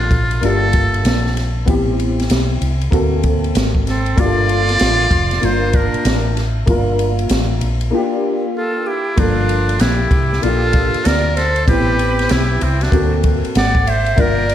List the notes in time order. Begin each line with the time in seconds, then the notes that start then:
Already playing: A#3 D4 F4 A4
0.11 A#1, kick, ride
0.31 ride
0.41 G1 A#3 D4 F4 G4, ride
0.45 A4
0.73 kick, ride
0.94 ride
1.05 A#1, snare, hi-hat pedal, ride
1.26 snare
1.37 snare, ride
1.65 A1 B3 C4 E4 G4, kick, ride
2.00 ride
2.20 snare, ride
2.30 B1, snare, hi-hat pedal, ride
2.61 C2, ride
2.81 ride
2.90 D2 A#3 C4 F#4 A4, kick, ride
3.23 kick, ride
3.44 ride
3.55 G#1, snare, hi-hat pedal, ride
3.75 kick
3.87 C4 A4, snare, ride
4.06 ride
4.16 G1 A#3 D4 F4 G4, kick, ride
4.20 D5
4.26 A4
4.49 ride
4.69 snare, ride
4.79 A1, snare, hi-hat pedal, ride
5.11 F1, kick, ride
5.31 snare, ride
5.41 G1 A#3 D4 F4, ride
5.45 A#4 C5
5.73 D4 A#4, kick, ride
5.94 muted fretless electric bass stroke, ride
6.05 A1, snare, hi-hat pedal, ride
6.37 snare, ride
6.66 G1 A#3 D4 F4 A#4, kick, ride
6.99 ride
7.19 ride
7.29 A1, snare, hi-hat pedal, ride
7.61 A#1, ride
7.81 ride
7.91 A#3 D4 F4
7.95 G4
8.55 F4 A4
8.86 E4 G4
9.16 G1 F3 A#3 D4 F4, kick, ride
9.20 A4
9.49 ride
9.69 ride
9.79 A#1 E4 G4, snare, hi-hat pedal, ride
10.11 C2, kick, ride
10.33 snare
10.41 A#1 A#3 D4 F4 G4 A4, ride
10.73 kick, ride
10.94 muted fretless electric bass stroke, ride
11.05 D2 A#4 D5, snare, hi-hat pedal, ride
11.36 A4 C5, snare, ride
11.56 ride
11.66 A1 B3 C4 E4 G4 B4, kick, ride
11.70 G4
11.99 ride
12.19 snare, ride
12.29 B1 E4 G4, snare, hi-hat pedal, ride
12.61 C2 C4 E4, ride
12.81 D4 F#4, snare, ride
12.91 D2 A#3 C4 F#4 A4, kick, ride
13.24 kick, ride
13.44 muted fretless electric bass stroke, ride
13.55 G#1 D5 F#5, snare, hi-hat pedal, ride
13.75 kick
13.87 C5 E5, ride
14.06 ride
14.16 G1 A#3 D4 F4 A#4 D5, kick, ride
14.20 A#4
14.49 ride